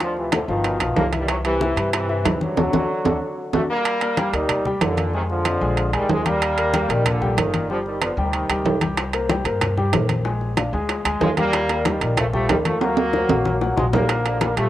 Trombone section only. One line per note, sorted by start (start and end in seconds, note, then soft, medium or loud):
0.02 0.16 D3 medium
0.02 0.16 F3 medium
0.17 0.32 C3 medium
0.17 0.32 E3 medium
0.33 0.41 A2 medium
0.33 0.40 D3 medium
0.49 0.94 B2 medium
0.49 0.94 D#3 medium
0.97 1.04 G3 medium
0.97 1.04 A#3 medium
1.19 1.29 D#3 medium
1.19 1.28 G3 medium
1.29 1.37 C3 medium
1.29 1.36 F#3 medium
1.45 1.90 C3 medium
1.45 1.90 E3 medium
1.93 2.38 C3 medium
1.93 2.38 E3 medium
2.41 3.50 D3 medium
2.41 3.49 F#3 medium
3.54 3.62 F#3 medium
3.54 3.61 A3 medium
3.70 4.30 G3 medium
3.70 4.30 A#3 loud
4.34 4.66 G3 loud
4.34 4.66 D#4 medium
4.82 5.12 A#2 medium
4.82 5.11 D3 medium
5.14 5.22 C3 medium
5.14 5.21 D#3 medium
5.30 5.90 D3 medium
5.30 5.90 F3 loud
5.94 6.09 D#3 medium
5.94 6.09 G3 medium
6.11 6.25 F3 medium
6.11 6.25 G#3 medium
6.26 6.89 G3 medium
6.26 6.90 A#3 loud
6.91 7.06 D#3 medium
6.91 7.06 G3 medium
7.07 7.36 A#2 medium
7.07 7.36 D3 medium
7.38 7.70 A#2 medium
7.38 7.70 D#3 medium
7.71 7.78 D3 medium
7.71 7.78 F3 medium
7.87 8.01 D#3 medium
7.87 8.01 G3 medium
8.02 8.10 D3 medium
8.02 8.09 F3 medium
8.19 8.78 C3 medium
8.19 8.78 D#3 medium
11.22 11.29 F3 medium
11.22 11.29 G#3 loud
11.38 11.83 G3 medium
11.38 11.82 A#3 loud
11.85 12.18 D#3 medium
11.85 12.17 G3 medium
12.17 12.25 F3 medium
12.17 12.24 A3 loud
12.33 12.49 F3 medium
12.33 12.48 A3 loud
12.48 12.57 D#3 medium
12.48 12.56 G3 medium
12.64 12.81 F3 medium
12.64 12.80 A3 loud
12.80 13.78 F#3 medium
12.80 13.77 A#3 loud
13.77 13.85 F3 medium
13.77 13.84 G#3 medium
13.93 14.02 G3 medium
13.93 14.53 A#3 medium
14.03 14.10 G3 medium
14.10 14.42 D3 medium
14.10 14.41 F3 medium
14.42 14.50 D3 medium
14.42 14.49 G3 medium
14.58 14.69 F3 medium
14.58 14.69 A3 loud